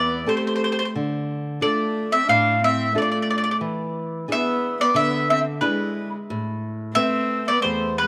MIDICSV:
0, 0, Header, 1, 4, 480
1, 0, Start_track
1, 0, Key_signature, 0, "minor"
1, 0, Tempo, 670391
1, 670, Time_signature, 4, 2, 24, 8
1, 5780, End_track
2, 0, Start_track
2, 0, Title_t, "Mandolin"
2, 0, Program_c, 0, 25
2, 0, Note_on_c, 0, 74, 75
2, 200, Note_off_c, 0, 74, 0
2, 206, Note_on_c, 0, 72, 58
2, 253, Note_off_c, 0, 72, 0
2, 264, Note_on_c, 0, 72, 41
2, 311, Note_off_c, 0, 72, 0
2, 338, Note_on_c, 0, 72, 51
2, 377, Note_off_c, 0, 72, 0
2, 398, Note_on_c, 0, 72, 49
2, 436, Note_off_c, 0, 72, 0
2, 459, Note_on_c, 0, 72, 55
2, 492, Note_off_c, 0, 72, 0
2, 516, Note_on_c, 0, 72, 52
2, 545, Note_off_c, 0, 72, 0
2, 564, Note_on_c, 0, 72, 56
2, 595, Note_off_c, 0, 72, 0
2, 610, Note_on_c, 0, 72, 42
2, 643, Note_off_c, 0, 72, 0
2, 1162, Note_on_c, 0, 74, 76
2, 1520, Note_on_c, 0, 76, 80
2, 1530, Note_off_c, 0, 74, 0
2, 1632, Note_off_c, 0, 76, 0
2, 1642, Note_on_c, 0, 77, 85
2, 1869, Note_off_c, 0, 77, 0
2, 1892, Note_on_c, 0, 76, 84
2, 2094, Note_off_c, 0, 76, 0
2, 2132, Note_on_c, 0, 74, 61
2, 2153, Note_off_c, 0, 74, 0
2, 2161, Note_on_c, 0, 74, 51
2, 2214, Note_off_c, 0, 74, 0
2, 2231, Note_on_c, 0, 74, 49
2, 2278, Note_off_c, 0, 74, 0
2, 2308, Note_on_c, 0, 74, 51
2, 2346, Note_off_c, 0, 74, 0
2, 2366, Note_on_c, 0, 74, 55
2, 2400, Note_off_c, 0, 74, 0
2, 2419, Note_on_c, 0, 74, 53
2, 2451, Note_off_c, 0, 74, 0
2, 2460, Note_on_c, 0, 74, 56
2, 2497, Note_off_c, 0, 74, 0
2, 2515, Note_on_c, 0, 74, 46
2, 2550, Note_off_c, 0, 74, 0
2, 3094, Note_on_c, 0, 76, 82
2, 3420, Note_off_c, 0, 76, 0
2, 3444, Note_on_c, 0, 74, 86
2, 3551, Note_on_c, 0, 76, 78
2, 3552, Note_off_c, 0, 74, 0
2, 3781, Note_off_c, 0, 76, 0
2, 3797, Note_on_c, 0, 76, 75
2, 3858, Note_off_c, 0, 76, 0
2, 4017, Note_on_c, 0, 71, 63
2, 4359, Note_off_c, 0, 71, 0
2, 4977, Note_on_c, 0, 76, 98
2, 5353, Note_off_c, 0, 76, 0
2, 5356, Note_on_c, 0, 74, 83
2, 5454, Note_off_c, 0, 74, 0
2, 5457, Note_on_c, 0, 72, 72
2, 5701, Note_off_c, 0, 72, 0
2, 5716, Note_on_c, 0, 71, 75
2, 5780, Note_off_c, 0, 71, 0
2, 5780, End_track
3, 0, Start_track
3, 0, Title_t, "Nylon-string guitar"
3, 0, Program_c, 1, 24
3, 0, Note_on_c, 1, 40, 59
3, 176, Note_off_c, 1, 40, 0
3, 189, Note_on_c, 1, 60, 45
3, 193, Note_on_c, 1, 67, 42
3, 196, Note_on_c, 1, 69, 44
3, 573, Note_off_c, 1, 60, 0
3, 576, Note_off_c, 1, 67, 0
3, 576, Note_off_c, 1, 69, 0
3, 684, Note_on_c, 1, 50, 57
3, 1139, Note_off_c, 1, 50, 0
3, 1154, Note_on_c, 1, 62, 40
3, 1159, Note_on_c, 1, 65, 32
3, 1161, Note_on_c, 1, 69, 45
3, 1533, Note_off_c, 1, 62, 0
3, 1536, Note_off_c, 1, 65, 0
3, 1536, Note_off_c, 1, 69, 0
3, 1637, Note_on_c, 1, 45, 68
3, 2094, Note_off_c, 1, 45, 0
3, 2110, Note_on_c, 1, 62, 45
3, 2112, Note_on_c, 1, 65, 44
3, 2117, Note_on_c, 1, 69, 46
3, 2489, Note_off_c, 1, 65, 0
3, 2490, Note_off_c, 1, 62, 0
3, 2491, Note_off_c, 1, 69, 0
3, 2584, Note_on_c, 1, 52, 60
3, 3047, Note_off_c, 1, 52, 0
3, 3064, Note_on_c, 1, 62, 41
3, 3069, Note_on_c, 1, 68, 43
3, 3070, Note_on_c, 1, 64, 37
3, 3447, Note_off_c, 1, 62, 0
3, 3448, Note_off_c, 1, 68, 0
3, 3450, Note_off_c, 1, 64, 0
3, 3540, Note_on_c, 1, 50, 66
3, 4004, Note_off_c, 1, 50, 0
3, 4018, Note_on_c, 1, 62, 52
3, 4023, Note_on_c, 1, 64, 48
3, 4027, Note_on_c, 1, 68, 51
3, 4403, Note_off_c, 1, 62, 0
3, 4405, Note_off_c, 1, 64, 0
3, 4408, Note_off_c, 1, 68, 0
3, 4512, Note_on_c, 1, 45, 63
3, 4975, Note_off_c, 1, 45, 0
3, 4980, Note_on_c, 1, 57, 38
3, 4985, Note_on_c, 1, 60, 39
3, 4985, Note_on_c, 1, 71, 35
3, 5369, Note_off_c, 1, 57, 0
3, 5371, Note_off_c, 1, 60, 0
3, 5372, Note_off_c, 1, 71, 0
3, 5471, Note_on_c, 1, 40, 62
3, 5780, Note_off_c, 1, 40, 0
3, 5780, End_track
4, 0, Start_track
4, 0, Title_t, "Viola"
4, 0, Program_c, 2, 41
4, 0, Note_on_c, 2, 59, 61
4, 181, Note_off_c, 2, 59, 0
4, 206, Note_on_c, 2, 57, 59
4, 649, Note_off_c, 2, 57, 0
4, 1168, Note_on_c, 2, 57, 67
4, 1497, Note_off_c, 2, 57, 0
4, 1536, Note_on_c, 2, 60, 72
4, 1620, Note_off_c, 2, 60, 0
4, 1625, Note_on_c, 2, 62, 69
4, 1859, Note_off_c, 2, 62, 0
4, 1886, Note_on_c, 2, 60, 71
4, 2091, Note_off_c, 2, 60, 0
4, 2118, Note_on_c, 2, 57, 69
4, 2559, Note_off_c, 2, 57, 0
4, 3090, Note_on_c, 2, 59, 79
4, 3418, Note_off_c, 2, 59, 0
4, 3449, Note_on_c, 2, 59, 68
4, 3544, Note_off_c, 2, 59, 0
4, 3568, Note_on_c, 2, 59, 74
4, 3790, Note_off_c, 2, 59, 0
4, 3796, Note_on_c, 2, 60, 67
4, 3897, Note_off_c, 2, 60, 0
4, 4033, Note_on_c, 2, 56, 57
4, 4368, Note_off_c, 2, 56, 0
4, 4979, Note_on_c, 2, 60, 77
4, 5325, Note_off_c, 2, 60, 0
4, 5368, Note_on_c, 2, 59, 70
4, 5465, Note_off_c, 2, 59, 0
4, 5470, Note_on_c, 2, 57, 64
4, 5708, Note_off_c, 2, 57, 0
4, 5740, Note_on_c, 2, 56, 59
4, 5780, Note_off_c, 2, 56, 0
4, 5780, End_track
0, 0, End_of_file